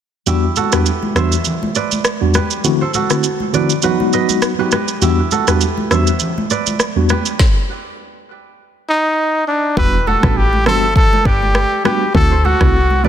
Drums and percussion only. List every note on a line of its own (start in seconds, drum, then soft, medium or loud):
0.27 low conga medium
0.27 shaker medium
0.56 high conga medium
0.56 shaker soft
0.72 cross-stick medium
0.72 shaker medium
0.86 shaker medium
1.03 high conga medium
1.16 cross-stick medium
1.16 low conga medium
1.16 shaker soft
1.32 shaker medium
1.45 low conga medium
1.45 shaker medium
1.63 high conga medium
1.75 shaker medium
1.92 high conga medium
1.92 shaker medium
2.05 cross-stick medium
2.05 shaker medium
2.34 cross-stick medium
2.34 high conga medium
2.34 shaker soft
2.51 shaker medium
2.64 low conga medium
2.64 shaker medium
2.94 high conga medium
2.94 shaker soft
3.10 cross-stick medium
3.10 shaker medium
3.24 shaker medium
3.40 high conga medium
3.54 low conga medium
3.54 shaker soft
3.70 shaker medium
3.82 low conga medium
3.82 shaker medium
4.00 high conga medium
4.13 shaker soft
4.29 high conga medium
4.29 shaker medium
4.42 cross-stick loud
4.42 shaker medium
4.72 cross-stick medium
4.72 high conga medium
4.72 shaker soft
4.88 shaker medium
5.02 low conga medium
5.02 shaker medium
5.31 high conga medium
5.31 shaker soft
5.48 cross-stick medium
5.48 shaker medium
5.61 shaker medium
5.78 high conga medium
5.91 cross-stick medium
5.91 low conga medium
5.91 shaker soft
6.07 shaker medium
6.20 low conga medium
6.20 shaker medium
6.38 high conga medium
6.50 shaker medium
6.67 high conga medium
6.67 shaker medium
6.80 cross-stick medium
6.80 shaker medium
7.09 cross-stick medium
7.09 high conga medium
7.09 shaker soft
7.26 shaker medium
7.39 kick loud
7.39 snare medium
9.77 kick loud
10.07 high conga medium
10.23 kick medium
10.23 cross-stick medium
10.53 high conga medium
10.66 cross-stick medium
10.66 high conga medium
10.66 low conga medium
10.96 kick loud
10.96 low conga medium
11.13 high conga medium
11.25 kick loud
11.42 high conga medium
11.55 cross-stick medium
11.85 cross-stick medium
11.85 high conga medium
12.15 kick loud
12.45 high conga medium
12.61 kick medium
12.61 cross-stick medium
12.90 high conga medium
13.04 high conga medium
13.04 low conga medium